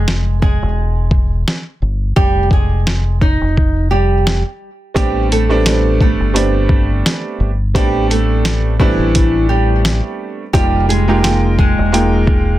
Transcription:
Already playing: F1 G#3 G#4
0.08 snare
0.42 G#3 G#4, kick
0.62 E1
1.11 kick
1.48 snare
1.82 G1
2.16 F1 G3 G4, kick
2.51 G#3 G#4, kick
2.87 snare
3.21 D#4 D#5, kick
3.41 F1
3.57 kick
3.91 G3 G4
4.27 snare
4.94 A1 G3 A3 B3 C4 D4 G4, kick, closed hi-hat
5.32 A3 A4, closed hi-hat
5.49 G3 A3 B3 C4 D4
5.65 G3 A3 B3 C4 D4, snare, closed hi-hat
6.01 A3 A4, kick
6.20 G1
6.33 G3 A3 B3 C4 D4, closed hi-hat
6.69 kick
7.06 snare, closed hi-hat
7.40 G1
7.74 A1 G3 A3 B3 C4 D4 G4, kick, closed hi-hat
8.10 A3 A4, closed hi-hat
8.45 snare, closed hi-hat
8.80 E3 G3 A3 B3 C4 D4 E4, kick
8.99 A1
9.15 kick, closed hi-hat
9.49 G3 G4
9.85 snare, closed hi-hat
10.53 F1 G3 A#3 D#4 F4 G4, kick, closed hi-hat
10.89 G#3 G#4, closed hi-hat
11.08 G#3 A#3 D#4 F4 G4
11.22 G#3 A#3 D#4 F4 G5, snare, closed hi-hat
11.58 G#3 G#4, kick
11.78 E1
11.92 G#3 A#3 D#4 F4 G5, closed hi-hat
12.27 kick

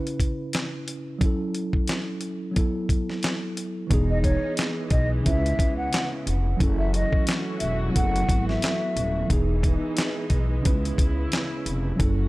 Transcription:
Already playing: C#3 C#4 E4 B4
0.07 closed hi-hat
0.20 kick, closed hi-hat
0.53 snare, clap, closed hi-hat
0.88 closed hi-hat
1.19 F#3 C#4, kick, closed hi-hat
1.23 E4 A4
1.55 closed hi-hat
1.73 kick
1.88 snare, clap, closed hi-hat
2.21 closed hi-hat
2.51 F#3 B3
2.56 E4 A4, kick, closed hi-hat
2.89 kick, closed hi-hat
3.10 snare
3.23 snare, clap, closed hi-hat
3.57 closed hi-hat
3.87 E1 E3 B3, kick, closed hi-hat
3.91 E3 G#3 B3 D#4 G#4
4.10 D#5
4.23 C#5, kick, closed hi-hat
4.57 snare, clap, closed hi-hat
4.90 B1 D#5, kick, closed hi-hat
5.21 C#3 C#4 E5
5.26 C#2 C#3 E4 B4, kick, closed hi-hat
5.46 closed hi-hat
5.59 C#2, kick, closed hi-hat
5.77 F#5
5.93 snare, clap, closed hi-hat
6.27 F1, closed hi-hat
6.57 F#1 E3 F#3 A3 C#4 F#4, kick, closed hi-hat
6.61 E4 A4
6.78 E5
6.94 D#5, closed hi-hat
7.13 kick
7.27 snare, clap, closed hi-hat
7.59 E1 E5, closed hi-hat
7.89 F#3 B3
7.94 F#1 B3 E4 A4 F#5, kick, closed hi-hat
8.16 closed hi-hat
8.29 G#1, kick, closed hi-hat
8.49 E5, snare
8.62 snare, clap, closed hi-hat
8.96 D#1, closed hi-hat
9.26 E1 E3 B3, kick
9.30 E3 G#3 B3 D#4 G#4, closed hi-hat
9.63 kick, closed hi-hat
9.97 snare, clap, closed hi-hat
10.30 B1, kick, closed hi-hat
10.60 C#3 C#4
10.65 C#2 C#3 E4 B4, kick, closed hi-hat
10.85 closed hi-hat
10.98 C#2, kick, closed hi-hat
11.32 snare, clap, closed hi-hat
11.66 F1, closed hi-hat
11.96 F#1 F#3 C#4, kick, closed hi-hat
12.00 E3 A3 C#4 E4 F#4 A4

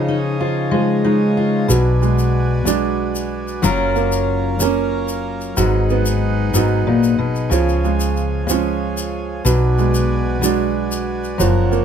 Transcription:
Already playing: C#3 F3 D#4 F4 C#5 D#5 G#5
0.08 D#4
0.40 F3 F4
0.71 F3 G#3
1.04 G#3 D#4
1.37 F4
1.68 B1 B2 F#3 F#4 B4 D5 G#5, shaker
2.02 G#3, shaker
2.19 shaker
2.65 F#3 G#3 D4, muted steel-string acoustic guitar stroke, shaker
3.15 shaker
3.48 shaker
3.62 F#1 F#2 F#3 C#4 F4 A#4 C#5 F5 A#5, shaker
3.96 A#3, shaker
4.12 shaker
4.60 A#3 C#4, muted steel-string acoustic guitar stroke, shaker
5.08 shaker
5.41 shaker
5.57 G#1 G#2 F#3 D#4 G#4 B4 F#5, shaker
5.90 B3, shaker
6.06 shaker
6.54 G#2 F#3 B3 D#4, shaker
6.87 A#2
7.04 shaker
7.18 B2
7.35 shaker
7.50 C#2 C#3 F3 F4 C#5 G#5, shaker
7.69 shaker
7.85 G#3, shaker
8.00 shaker
8.17 shaker
8.47 F3 G#3 C#4, muted steel-string acoustic guitar stroke, shaker
8.97 shaker
9.45 B1 B2 F#3 F#4 B4 D5 G#5, shaker
9.78 G#3, shaker
9.94 shaker
10.41 F#3 G#3 D4, muted steel-string acoustic guitar stroke, shaker
10.92 shaker
11.24 shaker
11.38 F#1 F#2 F3 A#4 C#5 F#5, shaker
11.72 A#3, shaker

